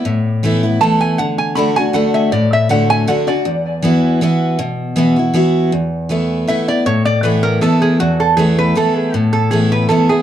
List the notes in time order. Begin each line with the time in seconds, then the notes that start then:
0.05 A2
0.43 E3 A3 B3 E4
0.63 B3 E4
0.81 E3 A3 B3 E4 A5
1.01 G#5
1.18 D3 F#5
1.38 G#5
1.55 D3 A3 D4 F#4 B5
1.76 D4 F#4 G#5
1.93 D3 A3 D4 F#4 F#5
2.14 E5
2.32 A2 D5
2.53 E5
2.69 D3 A3 D4 F#4 F#5
2.90 G#5
3.08 D3 A3 D4 F#4 F#5
3.27 D4 F#4 D5
3.45 E2
3.82 E3 B3 E4 F#4
4.21 E3 B3 E4 F#4
4.59 B2
4.96 E3 B3 E4 F#4
5.16 E4 F#4
5.34 E3 B3 E4 F#4
5.72 E2
6.09 E3 A3 B3 E4
6.48 E3 A3 B3 E4 E5
6.68 B3 E4 D5
6.86 A2 C#5
7.05 D5
7.23 E3 A3 B3 E4 B4
7.43 A#4
7.61 E3 A3 B3 E4 A4
7.82 G#4
8.00 E2 F#4
8.20 A4
8.37 E3 A3 B3 E4 G#4
8.59 B4
8.75 E3 A3 B3 E4 A4
8.96 G#4
9.14 A2 F#4
9.33 A4
9.51 E3 A3 B3 E4 G#4
9.72 B4
9.89 E3 A3 B3 E4 A4
10.09 B3 E4 G#4